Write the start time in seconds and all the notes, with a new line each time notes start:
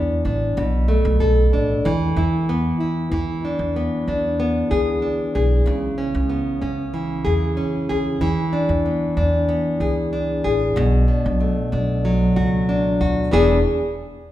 Already playing: E2 E3 B3 D4 G#4
0.25 A1 D4
0.57 B1 B2
0.88 A3
1.05 B1
1.20 B1 A4
1.53 A1 D4
1.85 E2 E3
2.16 E2 E4
2.49 B3
2.80 E4
3.11 E2 E3
3.45 D4
3.59 E2
3.76 B3
4.07 E2 D4
4.40 B3
4.71 D2 G#4
5.02 D4
5.35 B1 G#4
5.66 C#2 C#3
5.98 C#4
6.15 C#2
6.30 B3
6.62 C#2 C#4
6.94 E3
7.25 E2 G#4
7.57 C#4
7.89 D2 G#4
8.21 E2 E3
8.53 D4
8.69 E2
8.86 B3
9.17 E2 D4
9.49 B3
9.80 C#2 G#4
10.13 D4
10.44 A1 G#4
10.76 B1 B2
11.08 D4
11.26 B1
11.40 A3
11.72 B1 D4
12.05 F#3
12.36 C#2 F#4
12.69 D4
13.01 D2 F#4
13.31 E1 E3 B3 D4 G#4